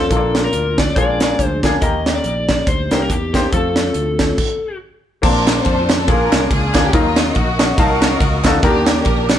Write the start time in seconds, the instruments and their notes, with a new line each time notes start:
Already playing: tonewheel organ F4, electric slide guitar A4
0.10 fingered electric bass A#1, grand piano A#2 A#3 D4 F4 A4, tonewheel organ A#3 D4, kick, closed hi-hat
0.17 grand piano D5
0.35 snare, closed hi-hat
0.45 electric slide guitar A#4
0.53 fingered electric bass D2, closed hi-hat
0.78 electric slide guitar D5, kick, snare, closed hi-hat
0.96 fingered electric bass A#1, grand piano A#2 A#3 D4 F4 G#4, tonewheel organ F3 G#3 A#3 G#4, electric slide guitar D5, kick, closed hi-hat
1.20 grand piano A#3 D4 F4 G#4, snare, closed hi-hat
1.39 fingered electric bass D2, kick, closed hi-hat
1.45 electric slide guitar C5
1.63 grand piano A#3 D4 F4 G#4, kick, snare, closed hi-hat
1.82 fingered electric bass D#2, grand piano D#3 A#3 D#4 G4 A#4, tonewheel organ D#4 G4, electric slide guitar D#5, kick, closed hi-hat
2.06 snare, closed hi-hat
2.16 electric slide guitar D5
2.24 fingered electric bass A#1, closed hi-hat
2.49 kick, snare, closed hi-hat
2.67 fingered electric bass D2, electric slide guitar C5, kick, closed hi-hat
2.91 fingered electric bass C2, grand piano A#3 D#4 G4 A#4, snare, closed hi-hat
3.03 electric slide guitar A#4
3.10 fingered electric bass E2, electric slide guitar G4, kick, closed hi-hat
3.33 grand piano A#3 D#4 G4 C5, kick, snare, closed hi-hat
3.52 fingered electric bass F2, grand piano A3 C4 F4 A4, tonewheel organ A3 C4 F4, electric slide guitar A4, kick, closed hi-hat
3.76 snare, closed hi-hat
3.94 fingered electric bass D2, closed hi-hat
4.19 kick, snare, closed hi-hat
4.38 kick, crash
5.22 fingered electric bass A#1, grand piano A#2 A#3 C4 D4 A5, tonewheel organ A#3 D5 A5 C6, string section D4 F4 A#4, kick, crash
5.47 snare, clap, ride
5.58 string section F4 A4 C5
5.65 fingered electric bass F2, kick, ride
5.89 snare, clap, ride
5.99 string section A4
6.07 fingered electric bass A#1, grand piano A#2 A#3 C#4 F4 G#4, string section D4 F4 A#4, tonewheel organ F5 G#5 D6, kick, ride
6.13 grand piano D4
6.32 fingered electric bass C2, snare, clap, ride
6.51 fingered electric bass C#2, string section D4 F4 G#4, kick, ride
6.74 fingered electric bass D2, grand piano A#3 D4 F4 G#4, kick, snare, clap, ride
6.85 string section G4
6.93 fingered electric bass D#2, grand piano D#3 F#3 D#4 F4 A#4, string section A#3 F4, tonewheel organ A#4 D#5 D#6, kick, ride
7.16 snare, clap, ride
7.35 fingered electric bass A#1, string section A#3 F#4, kick, ride
7.59 snare, clap, ride
7.77 fingered electric bass C2, grand piano F#3 D#4 F5 A5, string section F4 F#4 A#4, kick, ride
8.01 snare, clap, ride
8.21 fingered electric bass C#2, kick, ride
8.44 fingered electric bass D2, grand piano D#4 F4 F#4 A4, kick, snare, clap, ride
8.61 fingered electric bass D#2, grand piano D#3 A#3 D4 G4 A#4, string section A#3 D4 G4, tonewheel organ D5 G5 D6, kick, ride
8.86 snare, clap, ride
8.95 string section D4 G4 A#4
9.05 fingered electric bass A#1, kick, ride
9.29 snare, clap, ride